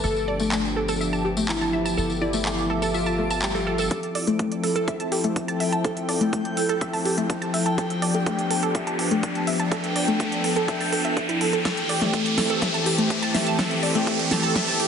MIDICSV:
0, 0, Header, 1, 9, 480
1, 0, Start_track
1, 0, Tempo, 483871
1, 39, Time_signature, 4, 2, 24, 8
1, 14758, End_track
2, 0, Start_track
2, 0, Title_t, "Synth texture"
2, 0, Program_c, 0, 99
2, 0, Note_on_c, 0, 86, 86
2, 3879, Note_on_c, 0, 79, 90
2, 3888, Note_off_c, 0, 86, 0
2, 14758, Note_off_c, 0, 79, 0
2, 14758, End_track
3, 0, Start_track
3, 0, Title_t, "Synth pluck"
3, 0, Program_c, 1, 84
3, 38, Note_on_c, 1, 69, 80
3, 143, Note_off_c, 1, 69, 0
3, 277, Note_on_c, 1, 74, 75
3, 347, Note_off_c, 1, 74, 0
3, 399, Note_on_c, 1, 57, 74
3, 440, Note_off_c, 1, 57, 0
3, 517, Note_on_c, 1, 57, 78
3, 560, Note_off_c, 1, 57, 0
3, 757, Note_on_c, 1, 69, 76
3, 862, Note_off_c, 1, 69, 0
3, 880, Note_on_c, 1, 69, 105
3, 982, Note_off_c, 1, 69, 0
3, 998, Note_on_c, 1, 76, 81
3, 1068, Note_off_c, 1, 76, 0
3, 1120, Note_on_c, 1, 81, 75
3, 1188, Note_off_c, 1, 81, 0
3, 1238, Note_on_c, 1, 67, 73
3, 1280, Note_off_c, 1, 67, 0
3, 1359, Note_on_c, 1, 57, 77
3, 1401, Note_off_c, 1, 57, 0
3, 1600, Note_on_c, 1, 81, 73
3, 1641, Note_off_c, 1, 81, 0
3, 1718, Note_on_c, 1, 76, 76
3, 1823, Note_off_c, 1, 76, 0
3, 1840, Note_on_c, 1, 81, 77
3, 1881, Note_off_c, 1, 81, 0
3, 1958, Note_on_c, 1, 69, 79
3, 2063, Note_off_c, 1, 69, 0
3, 2198, Note_on_c, 1, 74, 69
3, 2268, Note_off_c, 1, 74, 0
3, 2319, Note_on_c, 1, 57, 76
3, 2360, Note_off_c, 1, 57, 0
3, 2437, Note_on_c, 1, 57, 80
3, 2480, Note_off_c, 1, 57, 0
3, 2677, Note_on_c, 1, 69, 74
3, 2782, Note_off_c, 1, 69, 0
3, 2798, Note_on_c, 1, 69, 100
3, 2902, Note_off_c, 1, 69, 0
3, 2918, Note_on_c, 1, 76, 80
3, 2988, Note_off_c, 1, 76, 0
3, 3039, Note_on_c, 1, 81, 73
3, 3108, Note_off_c, 1, 81, 0
3, 3158, Note_on_c, 1, 57, 75
3, 3200, Note_off_c, 1, 57, 0
3, 3280, Note_on_c, 1, 81, 101
3, 3348, Note_off_c, 1, 81, 0
3, 3520, Note_on_c, 1, 69, 73
3, 3588, Note_off_c, 1, 69, 0
3, 3639, Note_on_c, 1, 69, 77
3, 3708, Note_off_c, 1, 69, 0
3, 3760, Note_on_c, 1, 69, 102
3, 3862, Note_off_c, 1, 69, 0
3, 3878, Note_on_c, 1, 69, 78
3, 3983, Note_off_c, 1, 69, 0
3, 4118, Note_on_c, 1, 74, 73
3, 4188, Note_off_c, 1, 74, 0
3, 4239, Note_on_c, 1, 57, 75
3, 4280, Note_off_c, 1, 57, 0
3, 4358, Note_on_c, 1, 57, 80
3, 4400, Note_off_c, 1, 57, 0
3, 4598, Note_on_c, 1, 69, 75
3, 4703, Note_off_c, 1, 69, 0
3, 4718, Note_on_c, 1, 69, 104
3, 4822, Note_off_c, 1, 69, 0
3, 4838, Note_on_c, 1, 76, 81
3, 4908, Note_off_c, 1, 76, 0
3, 4959, Note_on_c, 1, 81, 75
3, 5028, Note_off_c, 1, 81, 0
3, 5077, Note_on_c, 1, 67, 69
3, 5120, Note_off_c, 1, 67, 0
3, 5199, Note_on_c, 1, 57, 79
3, 5240, Note_off_c, 1, 57, 0
3, 5438, Note_on_c, 1, 81, 71
3, 5480, Note_off_c, 1, 81, 0
3, 5557, Note_on_c, 1, 76, 75
3, 5662, Note_off_c, 1, 76, 0
3, 5678, Note_on_c, 1, 81, 77
3, 5720, Note_off_c, 1, 81, 0
3, 5798, Note_on_c, 1, 69, 82
3, 5903, Note_off_c, 1, 69, 0
3, 6038, Note_on_c, 1, 74, 76
3, 6108, Note_off_c, 1, 74, 0
3, 6158, Note_on_c, 1, 57, 76
3, 6200, Note_off_c, 1, 57, 0
3, 6278, Note_on_c, 1, 57, 81
3, 6320, Note_off_c, 1, 57, 0
3, 6518, Note_on_c, 1, 69, 76
3, 6623, Note_off_c, 1, 69, 0
3, 6639, Note_on_c, 1, 69, 104
3, 6742, Note_off_c, 1, 69, 0
3, 6757, Note_on_c, 1, 76, 82
3, 6827, Note_off_c, 1, 76, 0
3, 6878, Note_on_c, 1, 81, 74
3, 6947, Note_off_c, 1, 81, 0
3, 6996, Note_on_c, 1, 67, 76
3, 7039, Note_off_c, 1, 67, 0
3, 7118, Note_on_c, 1, 57, 82
3, 7160, Note_off_c, 1, 57, 0
3, 7357, Note_on_c, 1, 81, 76
3, 7399, Note_off_c, 1, 81, 0
3, 7476, Note_on_c, 1, 76, 77
3, 7582, Note_off_c, 1, 76, 0
3, 7597, Note_on_c, 1, 81, 76
3, 7639, Note_off_c, 1, 81, 0
3, 7717, Note_on_c, 1, 69, 83
3, 7822, Note_off_c, 1, 69, 0
3, 7957, Note_on_c, 1, 74, 75
3, 8027, Note_off_c, 1, 74, 0
3, 8078, Note_on_c, 1, 57, 73
3, 8120, Note_off_c, 1, 57, 0
3, 8197, Note_on_c, 1, 57, 86
3, 8240, Note_off_c, 1, 57, 0
3, 8438, Note_on_c, 1, 69, 75
3, 8543, Note_off_c, 1, 69, 0
3, 8558, Note_on_c, 1, 69, 101
3, 8662, Note_off_c, 1, 69, 0
3, 8678, Note_on_c, 1, 76, 78
3, 8748, Note_off_c, 1, 76, 0
3, 8799, Note_on_c, 1, 81, 73
3, 8868, Note_off_c, 1, 81, 0
3, 8917, Note_on_c, 1, 67, 70
3, 8960, Note_off_c, 1, 67, 0
3, 9039, Note_on_c, 1, 57, 82
3, 9080, Note_off_c, 1, 57, 0
3, 9279, Note_on_c, 1, 81, 76
3, 9320, Note_off_c, 1, 81, 0
3, 9398, Note_on_c, 1, 76, 75
3, 9503, Note_off_c, 1, 76, 0
3, 9519, Note_on_c, 1, 81, 76
3, 9560, Note_off_c, 1, 81, 0
3, 9638, Note_on_c, 1, 69, 86
3, 9743, Note_off_c, 1, 69, 0
3, 9878, Note_on_c, 1, 74, 74
3, 9948, Note_off_c, 1, 74, 0
3, 9999, Note_on_c, 1, 57, 78
3, 10041, Note_off_c, 1, 57, 0
3, 10118, Note_on_c, 1, 57, 82
3, 10160, Note_off_c, 1, 57, 0
3, 10358, Note_on_c, 1, 69, 77
3, 10463, Note_off_c, 1, 69, 0
3, 10478, Note_on_c, 1, 69, 105
3, 10581, Note_off_c, 1, 69, 0
3, 10597, Note_on_c, 1, 76, 84
3, 10667, Note_off_c, 1, 76, 0
3, 10719, Note_on_c, 1, 81, 77
3, 10787, Note_off_c, 1, 81, 0
3, 10838, Note_on_c, 1, 69, 71
3, 10880, Note_off_c, 1, 69, 0
3, 10959, Note_on_c, 1, 76, 83
3, 11028, Note_off_c, 1, 76, 0
3, 11199, Note_on_c, 1, 64, 78
3, 11302, Note_off_c, 1, 64, 0
3, 11319, Note_on_c, 1, 69, 76
3, 11388, Note_off_c, 1, 69, 0
3, 11440, Note_on_c, 1, 69, 75
3, 11481, Note_off_c, 1, 69, 0
3, 11559, Note_on_c, 1, 69, 85
3, 11663, Note_off_c, 1, 69, 0
3, 11798, Note_on_c, 1, 74, 72
3, 11868, Note_off_c, 1, 74, 0
3, 11919, Note_on_c, 1, 57, 75
3, 11961, Note_off_c, 1, 57, 0
3, 12038, Note_on_c, 1, 57, 82
3, 12080, Note_off_c, 1, 57, 0
3, 12277, Note_on_c, 1, 69, 76
3, 12382, Note_off_c, 1, 69, 0
3, 12399, Note_on_c, 1, 69, 103
3, 12502, Note_off_c, 1, 69, 0
3, 12518, Note_on_c, 1, 76, 80
3, 12588, Note_off_c, 1, 76, 0
3, 12639, Note_on_c, 1, 81, 73
3, 12708, Note_off_c, 1, 81, 0
3, 12758, Note_on_c, 1, 67, 71
3, 12800, Note_off_c, 1, 67, 0
3, 12879, Note_on_c, 1, 57, 82
3, 12920, Note_off_c, 1, 57, 0
3, 13119, Note_on_c, 1, 81, 76
3, 13160, Note_off_c, 1, 81, 0
3, 13237, Note_on_c, 1, 76, 74
3, 13342, Note_off_c, 1, 76, 0
3, 13358, Note_on_c, 1, 81, 74
3, 13400, Note_off_c, 1, 81, 0
3, 13477, Note_on_c, 1, 69, 87
3, 13582, Note_off_c, 1, 69, 0
3, 13717, Note_on_c, 1, 74, 73
3, 13788, Note_off_c, 1, 74, 0
3, 13839, Note_on_c, 1, 57, 73
3, 13881, Note_off_c, 1, 57, 0
3, 13957, Note_on_c, 1, 57, 83
3, 14000, Note_off_c, 1, 57, 0
3, 14198, Note_on_c, 1, 69, 76
3, 14303, Note_off_c, 1, 69, 0
3, 14319, Note_on_c, 1, 69, 102
3, 14422, Note_off_c, 1, 69, 0
3, 14438, Note_on_c, 1, 76, 81
3, 14508, Note_off_c, 1, 76, 0
3, 14560, Note_on_c, 1, 81, 75
3, 14628, Note_off_c, 1, 81, 0
3, 14679, Note_on_c, 1, 67, 74
3, 14721, Note_off_c, 1, 67, 0
3, 14758, End_track
4, 0, Start_track
4, 0, Title_t, "Digital synth lead"
4, 0, Program_c, 2, 84
4, 38, Note_on_c, 2, 69, 102
4, 663, Note_off_c, 2, 69, 0
4, 1478, Note_on_c, 2, 64, 100
4, 2103, Note_off_c, 2, 64, 0
4, 2198, Note_on_c, 2, 64, 95
4, 2823, Note_off_c, 2, 64, 0
4, 2919, Note_on_c, 2, 65, 95
4, 3351, Note_off_c, 2, 65, 0
4, 3398, Note_on_c, 2, 67, 99
4, 3831, Note_off_c, 2, 67, 0
4, 14758, End_track
5, 0, Start_track
5, 0, Title_t, "Analog synth pad"
5, 0, Program_c, 3, 89
5, 37, Note_on_c, 3, 53, 82
5, 37, Note_on_c, 3, 62, 76
5, 38, Note_on_c, 3, 59, 73
5, 38, Note_on_c, 3, 67, 90
5, 1939, Note_off_c, 3, 62, 0
5, 1957, Note_on_c, 3, 76, 73
5, 3840, Note_off_c, 3, 53, 0
5, 3840, Note_off_c, 3, 59, 0
5, 3840, Note_off_c, 3, 67, 0
5, 3859, Note_off_c, 3, 76, 0
5, 3879, Note_on_c, 3, 53, 80
5, 3879, Note_on_c, 3, 60, 74
5, 3879, Note_on_c, 3, 64, 77
5, 3879, Note_on_c, 3, 69, 91
5, 7680, Note_off_c, 3, 64, 0
5, 7680, Note_off_c, 3, 69, 0
5, 7681, Note_off_c, 3, 60, 0
5, 7718, Note_on_c, 3, 59, 78
5, 7718, Note_on_c, 3, 62, 74
5, 7718, Note_on_c, 3, 67, 92
5, 9619, Note_off_c, 3, 67, 0
5, 9638, Note_on_c, 3, 69, 93
5, 11519, Note_off_c, 3, 53, 0
5, 11520, Note_off_c, 3, 59, 0
5, 11520, Note_off_c, 3, 62, 0
5, 11539, Note_off_c, 3, 69, 0
5, 11557, Note_on_c, 3, 52, 81
5, 11557, Note_on_c, 3, 60, 74
5, 11557, Note_on_c, 3, 67, 94
5, 11558, Note_on_c, 3, 57, 78
5, 14758, Note_off_c, 3, 52, 0
5, 14758, Note_off_c, 3, 57, 0
5, 14758, Note_off_c, 3, 60, 0
5, 14758, Note_off_c, 3, 67, 0
5, 14758, End_track
6, 0, Start_track
6, 0, Title_t, "Analog synth bass"
6, 0, Program_c, 4, 38
6, 38, Note_on_c, 4, 31, 86
6, 1935, Note_off_c, 4, 31, 0
6, 1959, Note_on_c, 4, 31, 88
6, 3855, Note_off_c, 4, 31, 0
6, 14758, End_track
7, 0, Start_track
7, 0, Title_t, "Riser"
7, 0, Program_c, 5, 103
7, 3878, Note_on_c, 5, 60, 83
7, 14758, Note_off_c, 5, 60, 0
7, 14758, End_track
8, 0, Start_track
8, 0, Title_t, "Swell"
8, 0, Program_c, 6, 103
8, 2918, Note_on_c, 6, 60, 75
8, 3879, Note_off_c, 6, 60, 0
8, 14758, End_track
9, 0, Start_track
9, 0, Title_t, "Drums"
9, 37, Note_on_c, 9, 54, 62
9, 136, Note_off_c, 9, 54, 0
9, 163, Note_on_c, 9, 54, 33
9, 262, Note_off_c, 9, 54, 0
9, 392, Note_on_c, 9, 54, 68
9, 492, Note_off_c, 9, 54, 0
9, 514, Note_on_c, 9, 39, 111
9, 514, Note_on_c, 9, 54, 61
9, 613, Note_off_c, 9, 39, 0
9, 613, Note_off_c, 9, 54, 0
9, 645, Note_on_c, 9, 54, 35
9, 744, Note_off_c, 9, 54, 0
9, 876, Note_on_c, 9, 54, 69
9, 975, Note_off_c, 9, 54, 0
9, 1004, Note_on_c, 9, 54, 67
9, 1103, Note_off_c, 9, 54, 0
9, 1120, Note_on_c, 9, 54, 33
9, 1219, Note_off_c, 9, 54, 0
9, 1357, Note_on_c, 9, 54, 73
9, 1456, Note_off_c, 9, 54, 0
9, 1474, Note_on_c, 9, 39, 106
9, 1480, Note_on_c, 9, 54, 59
9, 1574, Note_off_c, 9, 39, 0
9, 1579, Note_off_c, 9, 54, 0
9, 1599, Note_on_c, 9, 54, 33
9, 1698, Note_off_c, 9, 54, 0
9, 1841, Note_on_c, 9, 54, 72
9, 1940, Note_off_c, 9, 54, 0
9, 1966, Note_on_c, 9, 54, 61
9, 2065, Note_off_c, 9, 54, 0
9, 2080, Note_on_c, 9, 54, 39
9, 2179, Note_off_c, 9, 54, 0
9, 2312, Note_on_c, 9, 54, 78
9, 2412, Note_off_c, 9, 54, 0
9, 2435, Note_on_c, 9, 39, 114
9, 2438, Note_on_c, 9, 54, 58
9, 2534, Note_off_c, 9, 39, 0
9, 2538, Note_off_c, 9, 54, 0
9, 2562, Note_on_c, 9, 54, 33
9, 2662, Note_off_c, 9, 54, 0
9, 2798, Note_on_c, 9, 54, 71
9, 2897, Note_off_c, 9, 54, 0
9, 2921, Note_on_c, 9, 54, 62
9, 3020, Note_off_c, 9, 54, 0
9, 3035, Note_on_c, 9, 54, 35
9, 3134, Note_off_c, 9, 54, 0
9, 3277, Note_on_c, 9, 54, 78
9, 3376, Note_off_c, 9, 54, 0
9, 3391, Note_on_c, 9, 54, 60
9, 3394, Note_on_c, 9, 39, 109
9, 3491, Note_off_c, 9, 54, 0
9, 3494, Note_off_c, 9, 39, 0
9, 3525, Note_on_c, 9, 54, 37
9, 3624, Note_off_c, 9, 54, 0
9, 3752, Note_on_c, 9, 54, 75
9, 3851, Note_off_c, 9, 54, 0
9, 3878, Note_on_c, 9, 36, 119
9, 3878, Note_on_c, 9, 42, 69
9, 3977, Note_off_c, 9, 42, 0
9, 3978, Note_off_c, 9, 36, 0
9, 4000, Note_on_c, 9, 42, 40
9, 4099, Note_off_c, 9, 42, 0
9, 4118, Note_on_c, 9, 46, 106
9, 4217, Note_off_c, 9, 46, 0
9, 4240, Note_on_c, 9, 42, 41
9, 4339, Note_off_c, 9, 42, 0
9, 4358, Note_on_c, 9, 36, 108
9, 4358, Note_on_c, 9, 42, 68
9, 4457, Note_off_c, 9, 36, 0
9, 4457, Note_off_c, 9, 42, 0
9, 4480, Note_on_c, 9, 42, 39
9, 4579, Note_off_c, 9, 42, 0
9, 4598, Note_on_c, 9, 46, 98
9, 4698, Note_off_c, 9, 46, 0
9, 4720, Note_on_c, 9, 42, 38
9, 4819, Note_off_c, 9, 42, 0
9, 4838, Note_on_c, 9, 36, 112
9, 4838, Note_on_c, 9, 42, 66
9, 4937, Note_off_c, 9, 36, 0
9, 4938, Note_off_c, 9, 42, 0
9, 4959, Note_on_c, 9, 42, 40
9, 5059, Note_off_c, 9, 42, 0
9, 5078, Note_on_c, 9, 46, 101
9, 5177, Note_off_c, 9, 46, 0
9, 5200, Note_on_c, 9, 42, 39
9, 5299, Note_off_c, 9, 42, 0
9, 5318, Note_on_c, 9, 36, 105
9, 5318, Note_on_c, 9, 42, 66
9, 5417, Note_off_c, 9, 42, 0
9, 5418, Note_off_c, 9, 36, 0
9, 5440, Note_on_c, 9, 42, 39
9, 5539, Note_off_c, 9, 42, 0
9, 5558, Note_on_c, 9, 46, 100
9, 5657, Note_off_c, 9, 46, 0
9, 5679, Note_on_c, 9, 42, 39
9, 5779, Note_off_c, 9, 42, 0
9, 5798, Note_on_c, 9, 36, 127
9, 5799, Note_on_c, 9, 42, 68
9, 5897, Note_off_c, 9, 36, 0
9, 5898, Note_off_c, 9, 42, 0
9, 5920, Note_on_c, 9, 42, 39
9, 6019, Note_off_c, 9, 42, 0
9, 6039, Note_on_c, 9, 46, 113
9, 6138, Note_off_c, 9, 46, 0
9, 6160, Note_on_c, 9, 42, 41
9, 6259, Note_off_c, 9, 42, 0
9, 6278, Note_on_c, 9, 36, 109
9, 6279, Note_on_c, 9, 42, 66
9, 6378, Note_off_c, 9, 36, 0
9, 6378, Note_off_c, 9, 42, 0
9, 6399, Note_on_c, 9, 42, 41
9, 6498, Note_off_c, 9, 42, 0
9, 6519, Note_on_c, 9, 46, 103
9, 6618, Note_off_c, 9, 46, 0
9, 6640, Note_on_c, 9, 42, 39
9, 6739, Note_off_c, 9, 42, 0
9, 6758, Note_on_c, 9, 36, 123
9, 6759, Note_on_c, 9, 42, 65
9, 6857, Note_off_c, 9, 36, 0
9, 6858, Note_off_c, 9, 42, 0
9, 6880, Note_on_c, 9, 46, 63
9, 6979, Note_off_c, 9, 46, 0
9, 6999, Note_on_c, 9, 46, 107
9, 7098, Note_off_c, 9, 46, 0
9, 7120, Note_on_c, 9, 42, 41
9, 7219, Note_off_c, 9, 42, 0
9, 7238, Note_on_c, 9, 36, 108
9, 7239, Note_on_c, 9, 42, 62
9, 7338, Note_off_c, 9, 36, 0
9, 7338, Note_off_c, 9, 42, 0
9, 7360, Note_on_c, 9, 42, 39
9, 7459, Note_off_c, 9, 42, 0
9, 7478, Note_on_c, 9, 46, 101
9, 7578, Note_off_c, 9, 46, 0
9, 7600, Note_on_c, 9, 42, 38
9, 7699, Note_off_c, 9, 42, 0
9, 7718, Note_on_c, 9, 36, 120
9, 7719, Note_on_c, 9, 42, 63
9, 7817, Note_off_c, 9, 36, 0
9, 7818, Note_off_c, 9, 42, 0
9, 7840, Note_on_c, 9, 42, 39
9, 7939, Note_off_c, 9, 42, 0
9, 7958, Note_on_c, 9, 46, 112
9, 8058, Note_off_c, 9, 46, 0
9, 8080, Note_on_c, 9, 42, 39
9, 8179, Note_off_c, 9, 42, 0
9, 8198, Note_on_c, 9, 36, 114
9, 8198, Note_on_c, 9, 42, 60
9, 8297, Note_off_c, 9, 36, 0
9, 8297, Note_off_c, 9, 42, 0
9, 8319, Note_on_c, 9, 42, 38
9, 8419, Note_off_c, 9, 42, 0
9, 8438, Note_on_c, 9, 46, 109
9, 8537, Note_off_c, 9, 46, 0
9, 8559, Note_on_c, 9, 42, 37
9, 8658, Note_off_c, 9, 42, 0
9, 8678, Note_on_c, 9, 36, 122
9, 8678, Note_on_c, 9, 42, 63
9, 8777, Note_off_c, 9, 36, 0
9, 8777, Note_off_c, 9, 42, 0
9, 8799, Note_on_c, 9, 42, 36
9, 8899, Note_off_c, 9, 42, 0
9, 8918, Note_on_c, 9, 46, 106
9, 9017, Note_off_c, 9, 46, 0
9, 9039, Note_on_c, 9, 42, 38
9, 9138, Note_off_c, 9, 42, 0
9, 9157, Note_on_c, 9, 42, 60
9, 9158, Note_on_c, 9, 36, 112
9, 9257, Note_off_c, 9, 42, 0
9, 9258, Note_off_c, 9, 36, 0
9, 9279, Note_on_c, 9, 42, 37
9, 9378, Note_off_c, 9, 42, 0
9, 9397, Note_on_c, 9, 46, 104
9, 9496, Note_off_c, 9, 46, 0
9, 9519, Note_on_c, 9, 42, 39
9, 9618, Note_off_c, 9, 42, 0
9, 9638, Note_on_c, 9, 36, 124
9, 9638, Note_on_c, 9, 42, 61
9, 9737, Note_off_c, 9, 36, 0
9, 9737, Note_off_c, 9, 42, 0
9, 9759, Note_on_c, 9, 42, 37
9, 9858, Note_off_c, 9, 42, 0
9, 9878, Note_on_c, 9, 46, 107
9, 9977, Note_off_c, 9, 46, 0
9, 9999, Note_on_c, 9, 42, 37
9, 10098, Note_off_c, 9, 42, 0
9, 10118, Note_on_c, 9, 36, 111
9, 10118, Note_on_c, 9, 42, 59
9, 10217, Note_off_c, 9, 36, 0
9, 10217, Note_off_c, 9, 42, 0
9, 10239, Note_on_c, 9, 42, 36
9, 10339, Note_off_c, 9, 42, 0
9, 10358, Note_on_c, 9, 46, 107
9, 10457, Note_off_c, 9, 46, 0
9, 10479, Note_on_c, 9, 42, 35
9, 10578, Note_off_c, 9, 42, 0
9, 10598, Note_on_c, 9, 36, 117
9, 10598, Note_on_c, 9, 42, 58
9, 10697, Note_off_c, 9, 36, 0
9, 10697, Note_off_c, 9, 42, 0
9, 10719, Note_on_c, 9, 46, 66
9, 10818, Note_off_c, 9, 46, 0
9, 10838, Note_on_c, 9, 46, 105
9, 10937, Note_off_c, 9, 46, 0
9, 10960, Note_on_c, 9, 42, 38
9, 11059, Note_off_c, 9, 42, 0
9, 11078, Note_on_c, 9, 36, 102
9, 11079, Note_on_c, 9, 42, 58
9, 11177, Note_off_c, 9, 36, 0
9, 11178, Note_off_c, 9, 42, 0
9, 11200, Note_on_c, 9, 42, 38
9, 11299, Note_off_c, 9, 42, 0
9, 11318, Note_on_c, 9, 46, 107
9, 11418, Note_off_c, 9, 46, 0
9, 11440, Note_on_c, 9, 42, 37
9, 11539, Note_off_c, 9, 42, 0
9, 11558, Note_on_c, 9, 36, 122
9, 11558, Note_on_c, 9, 38, 50
9, 11558, Note_on_c, 9, 42, 63
9, 11658, Note_off_c, 9, 36, 0
9, 11658, Note_off_c, 9, 38, 0
9, 11658, Note_off_c, 9, 42, 0
9, 11680, Note_on_c, 9, 42, 38
9, 11779, Note_off_c, 9, 42, 0
9, 11798, Note_on_c, 9, 46, 103
9, 11897, Note_off_c, 9, 46, 0
9, 11919, Note_on_c, 9, 38, 45
9, 11919, Note_on_c, 9, 42, 38
9, 12018, Note_off_c, 9, 38, 0
9, 12018, Note_off_c, 9, 42, 0
9, 12038, Note_on_c, 9, 36, 108
9, 12038, Note_on_c, 9, 42, 64
9, 12137, Note_off_c, 9, 42, 0
9, 12138, Note_off_c, 9, 36, 0
9, 12159, Note_on_c, 9, 42, 36
9, 12258, Note_off_c, 9, 42, 0
9, 12278, Note_on_c, 9, 38, 53
9, 12278, Note_on_c, 9, 46, 105
9, 12377, Note_off_c, 9, 38, 0
9, 12377, Note_off_c, 9, 46, 0
9, 12400, Note_on_c, 9, 42, 37
9, 12499, Note_off_c, 9, 42, 0
9, 12518, Note_on_c, 9, 36, 122
9, 12518, Note_on_c, 9, 38, 52
9, 12518, Note_on_c, 9, 42, 60
9, 12617, Note_off_c, 9, 38, 0
9, 12617, Note_off_c, 9, 42, 0
9, 12618, Note_off_c, 9, 36, 0
9, 12639, Note_on_c, 9, 42, 40
9, 12738, Note_off_c, 9, 42, 0
9, 12758, Note_on_c, 9, 46, 104
9, 12858, Note_off_c, 9, 46, 0
9, 12880, Note_on_c, 9, 42, 39
9, 12979, Note_off_c, 9, 42, 0
9, 12998, Note_on_c, 9, 36, 105
9, 12999, Note_on_c, 9, 42, 60
9, 13098, Note_off_c, 9, 36, 0
9, 13098, Note_off_c, 9, 42, 0
9, 13119, Note_on_c, 9, 42, 38
9, 13219, Note_off_c, 9, 42, 0
9, 13238, Note_on_c, 9, 38, 57
9, 13238, Note_on_c, 9, 46, 107
9, 13338, Note_off_c, 9, 38, 0
9, 13338, Note_off_c, 9, 46, 0
9, 13360, Note_on_c, 9, 42, 38
9, 13459, Note_off_c, 9, 42, 0
9, 13479, Note_on_c, 9, 36, 116
9, 13479, Note_on_c, 9, 38, 62
9, 13479, Note_on_c, 9, 42, 67
9, 13578, Note_off_c, 9, 36, 0
9, 13578, Note_off_c, 9, 38, 0
9, 13578, Note_off_c, 9, 42, 0
9, 13600, Note_on_c, 9, 42, 40
9, 13699, Note_off_c, 9, 42, 0
9, 13718, Note_on_c, 9, 46, 98
9, 13818, Note_off_c, 9, 46, 0
9, 13839, Note_on_c, 9, 42, 42
9, 13939, Note_off_c, 9, 42, 0
9, 13959, Note_on_c, 9, 36, 98
9, 13959, Note_on_c, 9, 42, 68
9, 14058, Note_off_c, 9, 36, 0
9, 14058, Note_off_c, 9, 42, 0
9, 14080, Note_on_c, 9, 42, 38
9, 14179, Note_off_c, 9, 42, 0
9, 14198, Note_on_c, 9, 38, 67
9, 14198, Note_on_c, 9, 46, 96
9, 14297, Note_off_c, 9, 38, 0
9, 14297, Note_off_c, 9, 46, 0
9, 14320, Note_on_c, 9, 42, 37
9, 14419, Note_off_c, 9, 42, 0
9, 14439, Note_on_c, 9, 36, 117
9, 14439, Note_on_c, 9, 38, 66
9, 14439, Note_on_c, 9, 42, 61
9, 14538, Note_off_c, 9, 36, 0
9, 14538, Note_off_c, 9, 38, 0
9, 14538, Note_off_c, 9, 42, 0
9, 14560, Note_on_c, 9, 46, 57
9, 14659, Note_off_c, 9, 46, 0
9, 14679, Note_on_c, 9, 46, 103
9, 14758, Note_off_c, 9, 46, 0
9, 14758, End_track
0, 0, End_of_file